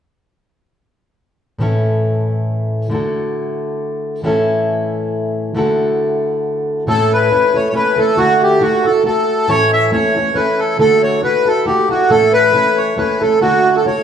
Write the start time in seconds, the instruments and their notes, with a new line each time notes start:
1.58 steel-string acoustic guitar A2 E3 A3 C#4 E4
1.63 steel-string acoustic guitar A4
2.90 steel-string acoustic guitar D3 A3 E4 F#4
2.94 steel-string acoustic guitar A4
4.23 steel-string acoustic guitar A2 E3 A3 C#4 E4
4.27 steel-string acoustic guitar A4
5.55 steel-string acoustic guitar D3 A3 E4 F#4 A4
6.87 steel-string acoustic guitar A2 E3 A3 C#4 E4 A4, accordion A4
7.13 accordion B4
7.30 steel-string acoustic guitar A3 C#4 E4 A4
7.54 steel-string acoustic guitar A3 C#4 E4 A4, accordion C#5
7.70 steel-string acoustic guitar A3, accordion C#5
7.74 steel-string acoustic guitar C#4 E4 A4, accordion B4
7.96 steel-string acoustic guitar A3 C#4 E4 A4, accordion A4
8.17 steel-string acoustic guitar D3 A3 E4 F#4 A4, accordion F#4
8.43 accordion G4
8.61 steel-string acoustic guitar A3 E4 F#4 A4, accordion F#4
8.85 steel-string acoustic guitar E4 F#4 A4, accordion A4
9.04 steel-string acoustic guitar A3 E4 F#4 A4, accordion A4
9.48 steel-string acoustic guitar A2 E3 A3 C#4 E4 A4, accordion C#5
9.73 accordion E5
9.92 steel-string acoustic guitar A3 C#4 E4 A4, accordion C#5
10.16 steel-string acoustic guitar A3 C#4 E4 A4
10.34 steel-string acoustic guitar A3 C#4 E4 A4, accordion B4
10.59 accordion A4
10.79 steel-string acoustic guitar D3 A3 E4 F#4 A4, accordion A4
11.03 accordion C#5
11.23 steel-string acoustic guitar A3 E4 F#4 A4, accordion B4
11.45 steel-string acoustic guitar E4 F#4 A4, accordion A4
11.66 steel-string acoustic guitar A3 E4 F#4 A4, accordion G4
11.89 steel-string acoustic guitar E4 F#4 A4, accordion F#4
12.09 steel-string acoustic guitar A2 E3 A3 C#4 E4 A4, accordion A4
12.33 accordion B4
12.53 steel-string acoustic guitar A3 C#4 E4 A4
12.78 accordion C#5
12.97 steel-string acoustic guitar A3 C#4 E4 A4, accordion B4
13.21 steel-string acoustic guitar A3 C#4 E4 A4, accordion A4
13.41 steel-string acoustic guitar D3 A3 E4 F#4 A4, accordion F#4
13.76 accordion A4
13.85 steel-string acoustic guitar A3 E4 F#4 A4, accordion C#5